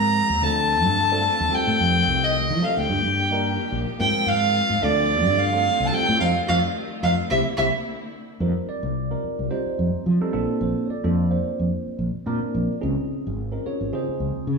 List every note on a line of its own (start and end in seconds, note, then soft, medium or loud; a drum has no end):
0.00 0.20 G#2 medium
0.00 0.42 D#3 medium
0.00 1.51 F3 medium
0.00 0.25 G#3 medium
0.00 0.42 G#3 medium
0.00 0.25 C4 medium
0.00 1.50 C4 medium
0.00 0.25 D#4 medium
0.00 0.25 F4 medium
0.00 2.87 F4 medium
0.00 0.25 A#4 medium
0.00 0.45 A#5 loud
0.00 0.46 A#5 medium
0.29 0.39 D#2 medium
0.41 0.85 D2 medium
0.41 1.51 D3 medium
0.41 1.51 A3 medium
0.41 0.97 A3 medium
0.41 0.98 C4 medium
0.41 0.98 D4 medium
0.41 0.98 F4 medium
0.41 0.98 A4 medium
0.41 1.56 A5 loud
0.41 1.55 A5 medium
0.85 1.27 G2 medium
1.12 1.52 A3 medium
1.12 1.50 C4 medium
1.12 1.52 D4 medium
1.12 1.50 F4 medium
1.12 1.51 A4 loud
1.40 1.50 D#2 medium
1.51 2.88 D#3 medium
1.51 2.40 G3 medium
1.51 3.97 G3 medium
1.51 2.88 A3 medium
1.51 2.88 C4 medium
1.51 2.41 C4 medium
1.51 2.41 D#4 medium
1.51 2.41 F4 medium
1.51 2.41 A4 medium
1.51 2.25 G5 medium
1.51 2.26 G5 loud
1.67 1.77 A2 medium
1.80 2.01 F2 medium
2.08 2.52 C2 medium
2.24 2.66 D#5 medium
2.24 2.65 D#5 medium
2.50 2.60 F3 medium
2.62 2.90 G3 medium
2.62 2.90 C4 medium
2.62 2.90 D#4 medium
2.62 2.90 F4 medium
2.62 2.90 A4 medium
2.62 2.80 F5 medium
2.62 2.79 F5 medium
2.77 2.87 D2 medium
2.77 3.72 G5 medium
2.77 3.73 G5 medium
2.90 3.01 G2 medium
2.90 3.99 D#3 medium
2.90 4.00 A#3 medium
2.90 3.99 G4 medium
3.04 3.57 G2 medium
3.31 3.85 G3 medium
3.31 3.85 D4 medium
3.31 3.85 D#4 medium
3.31 3.85 F4 medium
3.31 3.86 A#4 medium
3.72 3.84 A#1 medium
3.99 4.12 G#2 medium
3.99 4.82 D#3 medium
3.99 5.91 F3 medium
3.99 4.64 G#3 medium
3.99 4.82 G#3 medium
3.99 4.65 C4 medium
3.99 4.82 C4 medium
3.99 4.65 D#4 medium
3.99 4.65 F4 medium
3.99 4.82 F4 medium
3.99 4.65 A#4 medium
3.99 4.28 G5 medium
3.99 4.30 G5 loud
4.26 4.60 G#2 medium
4.26 4.84 F5 medium
4.26 4.85 F5 loud
4.70 4.79 G#2 medium
4.82 5.25 D2 loud
4.82 5.92 D3 medium
4.82 5.37 A3 medium
4.82 8.38 A3 medium
4.82 5.37 C4 medium
4.82 7.28 C4 medium
4.82 5.37 D4 medium
4.82 5.38 F4 medium
4.82 7.29 F4 medium
4.82 5.38 A4 medium
4.82 5.39 D5 medium
4.82 5.41 D5 medium
5.25 5.67 G2 medium
5.38 5.87 F5 medium
5.38 5.88 F5 loud
5.52 5.92 A3 medium
5.52 5.91 C4 medium
5.52 5.93 D4 medium
5.52 5.91 F4 medium
5.52 5.91 A4 medium
5.80 5.90 C2 medium
5.85 5.95 A5 medium
5.91 7.28 D#3 medium
5.91 6.20 G3 medium
5.91 7.29 G3 medium
5.91 6.20 C4 medium
5.91 6.20 D#4 medium
5.91 6.19 F4 medium
5.91 6.20 A4 medium
5.91 6.19 G5 loud
5.91 6.20 G5 medium
6.09 6.18 A2 medium
6.20 6.32 F2 medium
6.20 6.30 C4 medium
6.20 6.30 D#4 medium
6.20 6.30 F4 medium
6.20 6.30 F5 medium
6.48 6.60 F2 medium
6.48 6.58 C4 medium
6.48 6.58 D#4 medium
6.48 6.58 F4 medium
6.48 6.58 F5 loud
7.03 7.14 F2 medium
7.03 7.13 C4 medium
7.03 7.13 D#4 medium
7.03 7.13 F4 medium
7.03 7.13 F5 medium
7.29 7.42 C2 loud
7.29 8.40 D3 medium
7.29 8.39 A#3 medium
7.29 8.39 C4 medium
7.29 7.41 C4 medium
7.29 8.39 E4 medium
7.29 7.40 E4 loud
7.29 7.41 G4 medium
7.29 7.40 E5 medium
7.29 7.41 E5 medium
7.57 7.69 C2 medium
7.57 7.68 C4 medium
7.57 7.68 E4 medium
7.57 7.68 G4 medium
7.57 7.67 E5 medium
7.57 7.68 E5 medium
8.40 8.52 F2 medium
8.40 8.94 G3 medium
8.40 8.94 C4 soft
8.40 8.94 D#4 soft
8.40 8.94 F4 medium
8.40 8.95 A#4 medium
8.40 8.68 C5 medium
8.68 9.47 D5 medium
8.68 muted fretless electric bass stroke soft
8.83 9.14 C2 medium
9.11 9.42 G3 medium
9.11 9.43 C4 medium
9.11 9.43 D#4 medium
9.11 9.43 F4 medium
9.11 9.43 A#4 medium
9.24 muted fretless electric bass stroke soft
9.39 9.48 C2 medium
9.50 10.04 G3 medium
9.50 10.05 C4 medium
9.50 10.05 D#4 medium
9.50 10.05 F4 medium
9.50 10.05 C5 medium
9.66 muted fretless electric bass stroke soft
9.79 9.90 F2 medium
9.94 muted fretless electric bass stroke soft
10.06 10.18 F3 medium
10.21 10.34 G3 medium
10.21 10.31 C4 medium
10.21 10.34 D#4 medium
10.21 10.32 F4 medium
10.21 10.32 A4 loud
10.21 muted fretless electric bass stroke soft
10.32 10.46 A#1 medium
10.32 10.88 A#3 medium
10.32 10.88 C4 medium
10.32 10.89 D4 medium
10.32 10.89 F4 medium
10.32 10.89 A4 medium
10.61 10.73 A#1 medium
10.61 10.89 C5 medium
10.86 10.89 C#5 medium
10.86 muted fretless electric bass stroke soft
10.90 11.69 D5 medium
11.04 11.35 F2 medium
11.04 11.25 A#3 medium
11.04 11.25 C4 medium
11.04 11.25 D4 medium
11.04 11.25 F4 medium
11.04 11.25 A4 medium
11.31 12.06 A#3 medium
11.31 12.06 C4 medium
11.31 12.06 D4 medium
11.31 12.06 F4 medium
11.31 12.06 C5 medium
11.44 muted fretless electric bass stroke soft
11.59 11.69 F2 medium
11.87 muted fretless electric bass stroke soft
11.99 12.11 A#1 medium
12.15 muted fretless electric bass stroke soft
12.26 12.38 A#2 medium
12.26 12.71 A#3 medium
12.26 12.71 C4 medium
12.26 12.71 D4 medium
12.26 12.71 F4 medium
12.26 12.71 A#4 medium
12.26 12.78 D5 medium
12.42 muted fretless electric bass stroke soft
12.55 12.66 A#1 medium
12.81 12.95 C#2 medium
12.81 13.36 C4 medium
12.81 13.36 C#4 medium
12.81 13.36 D#4 medium
12.81 13.36 F4 medium
12.81 13.36 G#4 medium
13.11 muted fretless electric bass stroke soft
13.27 13.57 G#1 medium
13.52 13.84 C4 medium
13.52 13.65 C#4 medium
13.52 13.84 D#4 medium
13.52 13.65 F4 medium
13.52 13.84 A#4 medium
13.66 13.93 C#4 medium
13.66 13.92 F4 medium
13.66 13.92 G#4 medium
13.66 13.93 C#5 medium
13.66 muted fretless electric bass stroke soft
13.81 13.90 G#1 medium
13.93 14.47 C#3 medium
13.93 14.47 C4 medium
13.93 14.47 D#4 medium
13.93 14.47 F4 medium
13.93 14.47 G#4 medium
13.93 14.45 C5 medium
14.09 muted fretless electric bass stroke soft
14.20 14.32 C#2 medium
14.35 muted fretless electric bass stroke soft
14.47 14.58 C#3 medium